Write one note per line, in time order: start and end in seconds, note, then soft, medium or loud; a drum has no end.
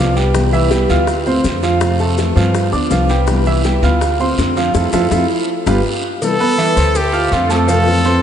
0.00 0.83 C2 medium
0.00 0.13 F3 medium
0.00 0.34 G3 soft
0.00 0.35 B3 medium
0.00 0.13 F4 medium
0.00 0.35 F4 medium
0.00 0.13 F5 medium
0.16 0.46 G3 medium
0.16 0.46 G4 medium
0.16 0.46 G5 medium
0.16 high bongo soft
0.16 short guiro medium
0.16 maracas soft
0.34 0.70 C3 medium
0.34 0.70 E3 medium
0.34 0.70 G3 medium
0.34 0.71 B3 medium
0.34 0.71 E4 medium
0.34 high bongo medium
0.34 long guiro medium
0.34 maracas medium
0.53 0.68 E3 medium
0.53 0.68 E4 medium
0.53 0.68 E5 medium
0.53 high bongo soft
0.53 maracas soft
0.71 0.89 E3 medium
0.71 0.86 G3 medium
0.71 0.89 G3 soft
0.71 0.89 B3 medium
0.71 0.87 E4 medium
0.71 0.86 G4 medium
0.71 0.87 G5 medium
0.71 high bongo medium
0.71 short guiro medium
0.71 maracas medium
0.89 1.41 D2 medium
0.89 1.08 E3 medium
0.89 1.08 G3 medium
0.89 1.07 B3 medium
0.89 1.07 E4 medium
0.89 1.20 F4 medium
0.89 1.20 F5 medium
0.89 1.20 F6 medium
0.89 short guiro medium
0.89 maracas soft
1.07 muted nylon-string guitar stroke medium
1.07 high bongo medium
1.07 long guiro medium
1.07 maracas medium
1.26 1.44 A3 medium
1.26 1.56 C4 medium
1.26 1.44 C4 medium
1.26 1.44 F4 medium
1.26 1.56 C5 medium
1.26 1.57 C6 medium
1.26 high bongo soft
1.26 maracas soft
1.44 2.30 F2 medium
1.44 1.80 D3 medium
1.44 1.81 A3 medium
1.44 1.81 C4 medium
1.44 1.82 F4 medium
1.44 high bongo soft
1.44 low bongo medium
1.44 short guiro medium
1.44 maracas medium
1.63 1.78 F3 medium
1.63 1.78 F4 medium
1.63 1.78 F5 medium
1.63 high bongo soft
1.63 short guiro medium
1.63 maracas soft
1.81 2.17 C3 medium
1.81 1.96 F3 medium
1.81 2.17 A3 medium
1.81 2.18 C4 medium
1.81 2.18 F4 medium
1.81 1.96 F5 medium
1.81 high bongo medium
1.81 long guiro medium
1.81 maracas medium
1.99 2.30 A3 medium
1.99 2.30 A4 medium
1.99 2.30 A5 medium
1.99 high bongo soft
1.99 maracas soft
2.17 2.35 E3 soft
2.17 2.36 A3 soft
2.17 2.36 C4 medium
2.17 2.34 F4 medium
2.17 high bongo medium
2.17 short guiro medium
2.17 maracas medium
2.36 2.70 G2 medium
2.36 2.55 E3 medium
2.36 2.66 F3 medium
2.36 2.54 A3 medium
2.36 2.54 C4 medium
2.36 2.54 F4 medium
2.36 2.66 F4 medium
2.36 2.66 F5 medium
2.36 short guiro medium
2.36 maracas soft
2.54 muted nylon-string guitar stroke medium
2.54 high bongo medium
2.54 long guiro medium
2.54 maracas medium
2.72 2.90 D2 medium
2.72 2.91 B3 medium
2.72 2.87 D4 medium
2.72 2.90 F4 medium
2.72 2.88 D5 medium
2.72 2.88 D6 medium
2.72 high bongo soft
2.72 maracas soft
2.90 3.77 C2 medium
2.90 3.06 F3 medium
2.90 3.27 G3 soft
2.90 3.28 B3 medium
2.90 3.06 F4 medium
2.90 3.28 F4 medium
2.90 3.06 F5 medium
2.90 high bongo soft
2.90 low bongo medium
2.90 short guiro medium
2.90 maracas medium
3.09 3.40 G3 medium
3.09 3.40 G4 medium
3.09 3.40 G5 medium
3.09 high bongo soft
3.09 short guiro medium
3.09 maracas soft
3.27 3.64 C3 medium
3.27 3.63 E3 medium
3.27 3.63 G3 medium
3.27 3.64 B3 medium
3.27 3.65 E4 medium
3.27 high bongo medium
3.27 long guiro medium
3.27 maracas medium
3.46 3.61 E3 medium
3.46 3.62 E4 medium
3.46 3.62 E5 medium
3.46 high bongo soft
3.46 maracas soft
3.64 3.82 E3 soft
3.64 3.82 G3 medium
3.64 3.80 G3 medium
3.64 3.82 B3 medium
3.64 3.81 E4 medium
3.64 3.80 G4 medium
3.64 3.80 G5 medium
3.64 high bongo medium
3.64 short guiro medium
3.64 maracas medium
3.82 4.34 D2 medium
3.82 4.01 E3 soft
3.82 4.01 G3 medium
3.82 4.01 B3 medium
3.82 4.00 E4 medium
3.82 4.13 F4 medium
3.82 4.13 F5 medium
3.82 4.13 F6 medium
3.82 short guiro medium
3.82 maracas soft
4.01 muted nylon-string guitar stroke medium
4.01 high bongo medium
4.01 long guiro medium
4.01 maracas medium
4.19 4.38 A3 medium
4.19 4.50 C4 medium
4.19 4.38 C4 medium
4.19 4.37 F4 medium
4.19 4.50 C5 medium
4.19 4.50 C6 medium
4.19 high bongo soft
4.19 maracas soft
4.38 4.72 F2 medium
4.38 4.74 D3 medium
4.38 4.75 A3 medium
4.38 4.74 C4 medium
4.38 4.75 F4 medium
4.38 high bongo soft
4.38 low bongo medium
4.38 short guiro medium
4.38 maracas medium
4.57 4.72 F3 medium
4.57 4.72 F4 medium
4.57 4.72 F5 medium
4.57 high bongo soft
4.57 short guiro medium
4.57 maracas soft
4.74 4.88 F2 medium
4.74 4.87 F3 medium
4.74 4.87 A3 medium
4.74 4.87 C4 medium
4.74 4.86 E4 medium
4.74 4.86 F4 medium
4.74 4.86 A4 medium
4.74 high bongo loud
4.74 long guiro medium
4.74 maracas medium
4.92 5.06 F2 loud
4.92 5.05 F3 loud
4.92 5.05 A3 loud
4.92 5.05 C4 loud
4.92 5.05 E4 loud
4.92 5.04 F4 loud
4.92 5.05 A4 loud
4.92 high bongo medium
4.92 long guiro loud
4.92 maracas medium
5.11 5.25 F2 loud
5.11 5.23 F3 medium
5.11 5.23 A3 loud
5.11 5.23 C4 loud
5.11 5.24 E4 loud
5.11 5.23 F4 medium
5.11 5.23 A4 medium
5.11 high bongo medium
5.11 long guiro medium
5.11 maracas medium
5.66 5.80 G1 loud
5.66 5.78 G3 medium
5.66 5.78 B3 loud
5.66 5.78 D4 loud
5.66 5.78 F4 loud
5.66 5.78 G4 loud
5.66 5.78 B4 medium
5.66 high bongo loud
5.66 long guiro loud
5.66 maracas medium
6.21 6.39 C3 medium
6.21 6.39 E3 medium
6.21 6.40 G3 medium
6.21 6.39 B3 medium
6.21 6.38 E4 medium
6.21 6.98 A4 loud
6.21 cowbell loud
6.21 long guiro medium
6.21 maracas medium
6.39 6.57 E3 medium
6.39 6.58 G3 medium
6.39 6.55 B3 medium
6.39 6.58 B3 medium
6.39 6.57 E4 medium
6.39 6.55 B4 medium
6.39 6.55 B5 medium
6.39 maracas soft
6.58 6.73 E3 medium
6.58 6.94 E3 medium
6.58 6.94 G3 medium
6.58 6.95 B3 medium
6.58 6.73 E4 medium
6.58 6.95 E4 medium
6.58 6.73 E5 medium
6.58 cowbell medium
6.58 short guiro medium
6.58 maracas soft
6.76 7.28 D2 medium
6.76 7.07 C5 medium
6.76 7.07 C6 medium
6.76 short guiro medium
6.76 maracas medium
6.95 7.34 G4 loud
6.95 muted nylon-string guitar stroke medium
6.95 cowbell loud
6.95 long guiro medium
6.95 maracas medium
7.13 7.43 F4 medium
7.13 7.43 F5 medium
7.13 7.43 F6 medium
7.13 maracas soft
7.31 8.17 F2 loud
7.31 7.49 D3 medium
7.31 7.49 A3 medium
7.31 7.49 C4 medium
7.31 7.53 F4 medium
7.31 7.48 F4 medium
7.31 cowbell medium
7.31 short guiro medium
7.31 maracas soft
7.49 7.64 A3 medium
7.49 7.68 A3 medium
7.49 7.68 C4 medium
7.49 7.67 F4 medium
7.49 7.65 A4 medium
7.49 8.22 A4 loud
7.49 7.65 A5 medium
7.49 cowbell medium
7.49 short guiro medium
7.49 maracas medium
7.67 7.86 C3 medium
7.67 7.86 E3 medium
7.67 7.98 F3 medium
7.67 7.86 A3 medium
7.67 7.86 C4 medium
7.67 7.98 F4 medium
7.67 7.85 F4 medium
7.67 7.98 F5 medium
7.67 cowbell loud
7.67 long guiro medium
7.67 maracas medium
7.86 8.05 E3 medium
7.86 8.04 A3 medium
7.86 8.04 C4 medium
7.86 8.04 F4 medium
7.86 maracas soft
8.04 8.22 A3 medium
8.04 8.20 C4 medium
8.04 8.22 C4 medium
8.04 8.22 F4 medium
8.04 8.20 C5 medium
8.04 8.20 C6 medium
8.04 cowbell medium
8.04 short guiro medium
8.04 maracas soft